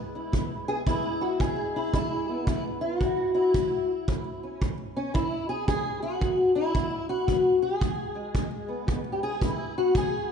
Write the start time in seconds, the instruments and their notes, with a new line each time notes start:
Already playing: steel-string acoustic guitar E2 G#3 B3
0.15 steel-string acoustic guitar E4
0.32 steel-string acoustic guitar E2, kick
0.68 steel-string acoustic guitar B3 G#4
0.86 steel-string acoustic guitar E2 G#3 B3 E4, kick
1.21 steel-string acoustic guitar F#4
1.40 steel-string acoustic guitar E2 G#4, kick
1.76 steel-string acoustic guitar E4
1.93 steel-string acoustic guitar E2 E4, kick
2.29 steel-string acoustic guitar B3
2.47 steel-string acoustic guitar E2 E4, kick
2.81 steel-string acoustic guitar F4
3.01 steel-string acoustic guitar A2 E4 F#4, kick
3.34 steel-string acoustic guitar E4
3.54 steel-string acoustic guitar A2, kick
4.08 steel-string acoustic guitar A2, kick
4.43 steel-string acoustic guitar C#4
4.61 steel-string acoustic guitar A2, kick
4.96 steel-string acoustic guitar C#4
5.14 steel-string acoustic guitar E2 E4, kick
5.49 steel-string acoustic guitar G#4
5.67 steel-string acoustic guitar E2 G#4, kick
6.02 steel-string acoustic guitar F#4
6.20 steel-string acoustic guitar E2, kick
6.55 steel-string acoustic guitar E4
6.74 steel-string acoustic guitar E2, kick
7.09 steel-string acoustic guitar F#4
7.27 steel-string acoustic guitar E2, kick
7.62 steel-string acoustic guitar G#4
7.81 steel-string acoustic guitar E2, kick
8.15 steel-string acoustic guitar G#3
8.35 steel-string acoustic guitar E2, kick
8.68 steel-string acoustic guitar B3
8.87 steel-string acoustic guitar E2, kick
9.12 steel-string acoustic guitar G4
9.23 steel-string acoustic guitar G#4
9.42 steel-string acoustic guitar A2 E4, kick
9.78 steel-string acoustic guitar F#4
9.95 steel-string acoustic guitar A2 G#4, kick